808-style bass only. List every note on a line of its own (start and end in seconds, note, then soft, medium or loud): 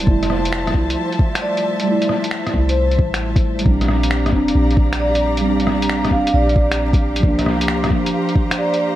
0.07 0.76 F1 medium
0.74 0.96 C2 medium
2.54 3.00 C2 medium
2.99 3.65 A1 medium
3.66 4.34 A#1 loud
4.32 4.54 F1 medium
4.55 6.12 A#1 medium
6.11 6.33 F1 medium
6.34 7.25 A#1 medium
7.23 7.92 C2 medium
7.90 8.12 G1 medium